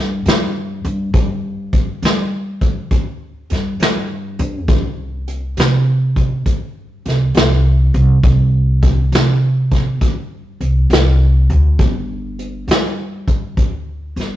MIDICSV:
0, 0, Header, 1, 3, 480
1, 0, Start_track
1, 0, Tempo, 591716
1, 929, Time_signature, 12, 3, 24, 8
1, 11651, End_track
2, 0, Start_track
2, 0, Title_t, "Upright bass"
2, 0, Program_c, 0, 32
2, 0, Note_on_c, 0, 43, 85
2, 189, Note_off_c, 0, 43, 0
2, 207, Note_on_c, 0, 43, 84
2, 655, Note_off_c, 0, 43, 0
2, 686, Note_on_c, 0, 43, 88
2, 908, Note_off_c, 0, 43, 0
2, 921, Note_on_c, 0, 43, 85
2, 1611, Note_off_c, 0, 43, 0
2, 1642, Note_on_c, 0, 55, 79
2, 2358, Note_off_c, 0, 55, 0
2, 2358, Note_on_c, 0, 38, 93
2, 2809, Note_off_c, 0, 38, 0
2, 2849, Note_on_c, 0, 43, 74
2, 3068, Note_off_c, 0, 43, 0
2, 3089, Note_on_c, 0, 43, 77
2, 3534, Note_off_c, 0, 43, 0
2, 3563, Note_on_c, 0, 43, 95
2, 3801, Note_off_c, 0, 43, 0
2, 3801, Note_on_c, 0, 36, 99
2, 4490, Note_off_c, 0, 36, 0
2, 4522, Note_on_c, 0, 48, 83
2, 5238, Note_off_c, 0, 48, 0
2, 5238, Note_on_c, 0, 43, 92
2, 5688, Note_off_c, 0, 43, 0
2, 5725, Note_on_c, 0, 36, 76
2, 5945, Note_off_c, 0, 36, 0
2, 5962, Note_on_c, 0, 36, 86
2, 6410, Note_off_c, 0, 36, 0
2, 6443, Note_on_c, 0, 36, 99
2, 6664, Note_off_c, 0, 36, 0
2, 6679, Note_on_c, 0, 36, 97
2, 7369, Note_off_c, 0, 36, 0
2, 7400, Note_on_c, 0, 48, 88
2, 8122, Note_off_c, 0, 48, 0
2, 8122, Note_on_c, 0, 43, 99
2, 8572, Note_off_c, 0, 43, 0
2, 8603, Note_on_c, 0, 36, 77
2, 8825, Note_off_c, 0, 36, 0
2, 8841, Note_on_c, 0, 36, 92
2, 9292, Note_off_c, 0, 36, 0
2, 9326, Note_on_c, 0, 38, 95
2, 9565, Note_on_c, 0, 31, 95
2, 9577, Note_off_c, 0, 38, 0
2, 10255, Note_off_c, 0, 31, 0
2, 10283, Note_on_c, 0, 43, 83
2, 11010, Note_off_c, 0, 43, 0
2, 11010, Note_on_c, 0, 38, 90
2, 11459, Note_off_c, 0, 38, 0
2, 11489, Note_on_c, 0, 31, 73
2, 11651, Note_off_c, 0, 31, 0
2, 11651, End_track
3, 0, Start_track
3, 0, Title_t, "Drums"
3, 207, Note_on_c, 9, 42, 80
3, 230, Note_on_c, 9, 38, 93
3, 288, Note_off_c, 9, 42, 0
3, 311, Note_off_c, 9, 38, 0
3, 685, Note_on_c, 9, 42, 56
3, 767, Note_off_c, 9, 42, 0
3, 922, Note_on_c, 9, 42, 74
3, 924, Note_on_c, 9, 36, 99
3, 1003, Note_off_c, 9, 42, 0
3, 1005, Note_off_c, 9, 36, 0
3, 1401, Note_on_c, 9, 42, 61
3, 1403, Note_on_c, 9, 36, 78
3, 1482, Note_off_c, 9, 42, 0
3, 1484, Note_off_c, 9, 36, 0
3, 1642, Note_on_c, 9, 42, 69
3, 1665, Note_on_c, 9, 38, 88
3, 1723, Note_off_c, 9, 42, 0
3, 1746, Note_off_c, 9, 38, 0
3, 2120, Note_on_c, 9, 36, 77
3, 2120, Note_on_c, 9, 42, 60
3, 2201, Note_off_c, 9, 36, 0
3, 2202, Note_off_c, 9, 42, 0
3, 2359, Note_on_c, 9, 42, 69
3, 2360, Note_on_c, 9, 36, 78
3, 2440, Note_off_c, 9, 42, 0
3, 2441, Note_off_c, 9, 36, 0
3, 2839, Note_on_c, 9, 42, 52
3, 2862, Note_on_c, 9, 38, 29
3, 2920, Note_off_c, 9, 42, 0
3, 2943, Note_off_c, 9, 38, 0
3, 3080, Note_on_c, 9, 42, 66
3, 3103, Note_on_c, 9, 38, 101
3, 3161, Note_off_c, 9, 42, 0
3, 3184, Note_off_c, 9, 38, 0
3, 3561, Note_on_c, 9, 42, 67
3, 3642, Note_off_c, 9, 42, 0
3, 3797, Note_on_c, 9, 42, 78
3, 3799, Note_on_c, 9, 36, 107
3, 3878, Note_off_c, 9, 42, 0
3, 3880, Note_off_c, 9, 36, 0
3, 4280, Note_on_c, 9, 42, 65
3, 4361, Note_off_c, 9, 42, 0
3, 4518, Note_on_c, 9, 42, 72
3, 4541, Note_on_c, 9, 38, 87
3, 4599, Note_off_c, 9, 42, 0
3, 4622, Note_off_c, 9, 38, 0
3, 5000, Note_on_c, 9, 36, 74
3, 5000, Note_on_c, 9, 42, 56
3, 5081, Note_off_c, 9, 36, 0
3, 5081, Note_off_c, 9, 42, 0
3, 5239, Note_on_c, 9, 36, 69
3, 5239, Note_on_c, 9, 42, 75
3, 5320, Note_off_c, 9, 36, 0
3, 5320, Note_off_c, 9, 42, 0
3, 5722, Note_on_c, 9, 42, 55
3, 5745, Note_on_c, 9, 38, 31
3, 5803, Note_off_c, 9, 42, 0
3, 5826, Note_off_c, 9, 38, 0
3, 5958, Note_on_c, 9, 42, 75
3, 5980, Note_on_c, 9, 38, 106
3, 6039, Note_off_c, 9, 42, 0
3, 6062, Note_off_c, 9, 38, 0
3, 6441, Note_on_c, 9, 42, 60
3, 6522, Note_off_c, 9, 42, 0
3, 6680, Note_on_c, 9, 36, 106
3, 6681, Note_on_c, 9, 42, 74
3, 6761, Note_off_c, 9, 36, 0
3, 6762, Note_off_c, 9, 42, 0
3, 7159, Note_on_c, 9, 42, 65
3, 7161, Note_on_c, 9, 36, 82
3, 7240, Note_off_c, 9, 42, 0
3, 7242, Note_off_c, 9, 36, 0
3, 7400, Note_on_c, 9, 42, 71
3, 7422, Note_on_c, 9, 38, 93
3, 7481, Note_off_c, 9, 42, 0
3, 7504, Note_off_c, 9, 38, 0
3, 7881, Note_on_c, 9, 36, 75
3, 7881, Note_on_c, 9, 42, 65
3, 7904, Note_on_c, 9, 38, 30
3, 7962, Note_off_c, 9, 36, 0
3, 7962, Note_off_c, 9, 42, 0
3, 7985, Note_off_c, 9, 38, 0
3, 8122, Note_on_c, 9, 36, 78
3, 8122, Note_on_c, 9, 42, 66
3, 8203, Note_off_c, 9, 36, 0
3, 8203, Note_off_c, 9, 42, 0
3, 8606, Note_on_c, 9, 42, 65
3, 8687, Note_off_c, 9, 42, 0
3, 8845, Note_on_c, 9, 42, 85
3, 8868, Note_on_c, 9, 38, 94
3, 8926, Note_off_c, 9, 42, 0
3, 8949, Note_off_c, 9, 38, 0
3, 9328, Note_on_c, 9, 42, 66
3, 9409, Note_off_c, 9, 42, 0
3, 9564, Note_on_c, 9, 42, 84
3, 9565, Note_on_c, 9, 36, 95
3, 9645, Note_off_c, 9, 42, 0
3, 9646, Note_off_c, 9, 36, 0
3, 10051, Note_on_c, 9, 42, 58
3, 10132, Note_off_c, 9, 42, 0
3, 10288, Note_on_c, 9, 42, 69
3, 10311, Note_on_c, 9, 38, 91
3, 10369, Note_off_c, 9, 42, 0
3, 10392, Note_off_c, 9, 38, 0
3, 10769, Note_on_c, 9, 36, 75
3, 10772, Note_on_c, 9, 42, 57
3, 10851, Note_off_c, 9, 36, 0
3, 10853, Note_off_c, 9, 42, 0
3, 11010, Note_on_c, 9, 36, 80
3, 11011, Note_on_c, 9, 42, 66
3, 11091, Note_off_c, 9, 36, 0
3, 11092, Note_off_c, 9, 42, 0
3, 11495, Note_on_c, 9, 42, 56
3, 11517, Note_on_c, 9, 38, 28
3, 11576, Note_off_c, 9, 42, 0
3, 11599, Note_off_c, 9, 38, 0
3, 11651, End_track
0, 0, End_of_file